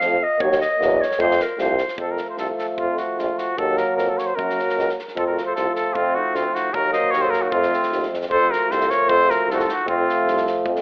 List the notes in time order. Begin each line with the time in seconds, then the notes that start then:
Already playing: F5
0.00 F2 F3 A3, snare
0.23 D#5
0.39 D#2 F#3 A#3 C#5, kick
0.52 snare
0.61 D#5, snare
0.78 E2 F#3 A#3, snare
1.01 C#5, snare
1.11 snare
1.18 F2 F3 A3 C5, kick
1.31 snare
1.40 A#4, snare
1.57 C2 F3 A3 C5, snare
1.78 snare
1.88 snare
1.97 F2 F3 A3 A4, kick
2.11 A#4
2.17 snare
2.30 C5
2.37 C2 A4, snare
2.58 A4, snare
2.77 F2 F4, kick
2.97 F#4, snare
3.17 A#1 F4, snare
3.38 F#4, snare
3.57 D#2 F#3 A#3 A4, kick
3.77 A#4, snare
3.96 F2 A#4, snare
4.09 A4
4.18 C#5, snare
4.26 C5
4.35 F#2 F#3 A#3 F#4 A#4, kick
4.50 snare
4.59 snare
4.69 snare
4.76 C#2, snare
4.89 snare
4.99 snare
5.08 snare
5.15 F2 F3 A3 F4 A4, kick
5.27 F#4 A#4
5.38 snare
5.46 A4 C5
5.55 C2 F4 A4, snare
5.75 F4 A4, snare
5.94 F2 C4 F4, kick
6.15 D#4 F#4
6.34 D2 C4 F4, snare
6.54 D#4 F#4, snare
6.72 D#2 F#3 A#3 F#4 A#4, kick
6.93 C5 D#5, snare
7.11 D#2 A#4 C#5, snare
7.22 A4 C5
7.31 A#4, snare
7.35 F#4
7.42 D#4 F#4
7.50 F2 F3 C4 F4, kick
7.54 A3
7.63 snare
7.73 snare
7.83 snare
7.91 D#2, snare
8.03 snare
8.10 F2, snare
8.22 snare
8.29 F2 F3 A3 A4 C5, kick
8.51 F#4 A#4, snare
8.68 C2 A4 C5, snare
8.81 snare
8.90 A#4 C#5, snare
9.08 F2 A4 C5, kick
9.29 F#4 A#4, snare
9.47 C2 F4, snare
9.51 D#4 F#4 A4
9.58 F4 A4, snare
9.66 D#4, snare
9.71 F#4
9.86 F2 F3 A3 C4 F4, kick
10.09 snare
10.26 C2, snare
10.37 snare
10.47 snare
10.64 F2, kick
10.76 snare